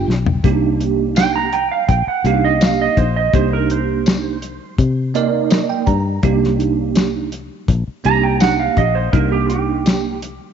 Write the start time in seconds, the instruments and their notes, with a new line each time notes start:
Already playing: tine electric piano B3 D4 F4 G4
0.08 fingered electric bass B1, snare
0.26 floor tom
0.44 fingered electric bass C2, tine electric piano A#3 D4 D#4 G4, kick, closed hi-hat
0.81 closed hi-hat
1.16 electric slide guitar G5, snare, closed hi-hat, tambourine
1.36 electric slide guitar A#5
1.53 electric slide guitar G5, closed hi-hat
1.72 electric slide guitar F5
1.88 fingered electric bass A#1, electric slide guitar G5, kick, closed hi-hat
2.07 electric slide guitar F#5, muted fingered electric bass stroke
2.24 fingered electric bass C2, tine electric piano A#3 D4 D#4 G4, electric slide guitar F5, closed hi-hat
2.44 electric slide guitar D#5
2.61 electric slide guitar F5, snare, closed hi-hat, tambourine
2.81 electric slide guitar D#5
2.97 fingered electric bass A#1, electric slide guitar C5, kick, closed hi-hat
3.16 electric slide guitar D#5
3.33 fingered electric bass C2, tine electric piano A#3 D4 D#4 G4, electric slide guitar C5, kick, closed hi-hat
3.53 electric slide guitar A#4
3.70 electric slide guitar C5, closed hi-hat
4.06 snare, closed hi-hat, tambourine
4.42 closed hi-hat
4.78 fingered electric bass C3, kick, closed hi-hat
5.14 tine electric piano A#3 D#4 A#4 D5 D#5, closed hi-hat
5.50 tine electric piano D#5, snare, closed hi-hat, tambourine
5.69 tine electric piano G5
5.86 fingered electric bass G2, tine electric piano A#5, kick, closed hi-hat
6.23 fingered electric bass C2, tine electric piano A#3 D4 D#4 G4, kick, closed hi-hat
6.44 snare
6.60 closed hi-hat
6.95 snare, closed hi-hat, tambourine
7.32 closed hi-hat
7.68 fingered electric bass A#1, kick, closed hi-hat
7.88 muted fingered electric bass stroke
8.04 fingered electric bass C2, tine electric piano A#3 D4 D#4 G4, electric slide guitar A#5, closed hi-hat
8.23 electric slide guitar G5
8.40 electric slide guitar F#5, snare, closed hi-hat, tambourine
8.60 electric slide guitar F5
8.77 fingered electric bass A#1, electric slide guitar D#5, kick, closed hi-hat
8.95 electric slide guitar C5
9.13 fingered electric bass C2, tine electric piano A#3 D4 D#4 G4, electric slide guitar A#4, kick, closed hi-hat
9.32 electric slide guitar G4
9.49 electric slide guitar G4, closed hi-hat
9.86 snare, closed hi-hat, tambourine
10.22 closed hi-hat